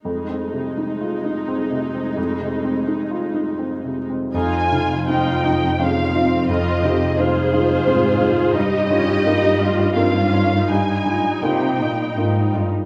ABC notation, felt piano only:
X:1
M:3/4
L:1/8
Q:1/4=85
K:Fm
V:1 name="Felt piano"
(3F,, C C, (3E F E (3C C, C | (3F,, C, C (3E F E (3C C, C | F,, [EF] [CEF] [EF] [CEF] [EF] | F,, [EF] [CEF] [EF] [CEF] [EF] |
G,, [EF] [B,EF] [EF] [B,EF] [EF] | G,, [EF] [B,EF] [EF] [B,EF] [EF] |]